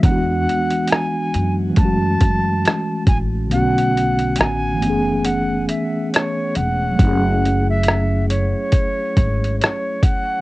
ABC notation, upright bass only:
X:1
M:4/4
L:1/16
Q:"Swing 16ths" 1/4=69
K:F#m
V:1 name="Upright bass" clef=bass
E,,2 z4 F,,2 F,,2 F,,2 z2 A,,,2 | B,,,4 A,,,2 F,,,4 z4 E,,,2 | F,,,6- F,,, z3 G,,,2 z4 |]